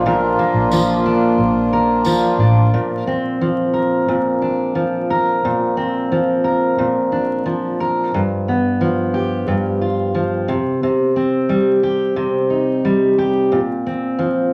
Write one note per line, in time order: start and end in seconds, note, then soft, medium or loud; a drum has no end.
0.00 0.34 A#1 medium
0.00 0.72 F3 medium
0.00 2.70 A#3 medium
0.00 1.05 D4 medium
0.00 2.35 D4 medium
0.00 2.70 D4 medium
0.00 2.36 F4 medium
0.00 2.68 F4 medium
0.00 2.36 A#4 medium
0.00 2.40 F5 medium
0.06 1.39 A#2 medium
0.06 1.72 A#4 medium
0.39 3.07 A#3 medium
0.54 1.34 A#1 medium
0.72 2.05 F3 medium
0.72 tambourine loud
1.06 2.39 D4 medium
1.38 2.35 A#1 loud
1.73 3.10 A#4 medium
2.05 3.41 F3 medium
2.05 tambourine medium
2.38 2.70 A1 medium
2.38 3.10 D4 medium
2.74 4.07 A#2 medium
3.07 5.76 C4 medium
3.41 4.75 F3 medium
3.74 5.09 A#4 medium
4.08 5.43 A#2 medium
4.42 7.12 D4 soft
4.75 6.11 F3 medium
5.10 6.43 A#4 medium
5.45 6.77 A#2 medium
5.77 8.19 C4 medium
6.12 7.45 F3 medium
6.44 7.79 A#4 medium
6.78 8.13 A#2 medium
7.12 9.81 D4 soft
7.46 8.51 F3 medium
7.80 8.20 A#4 medium
8.14 9.46 G2 medium
8.48 10.56 B3 medium
8.81 10.13 F3 medium
9.14 11.83 G4 medium
9.48 10.55 G2 medium
9.81 10.55 F4 soft
10.15 10.55 F3 medium
10.48 10.82 C3 medium
10.83 12.15 C3 medium
11.16 13.86 C4 soft
11.49 12.83 G3 medium
11.83 13.17 G4 medium
12.16 13.58 C3 medium
12.50 13.58 D#4 soft
12.85 13.58 G3 medium
13.18 13.58 G4 medium
13.52 14.53 A#2 medium
13.86 14.53 C4 soft
14.19 14.53 F3 medium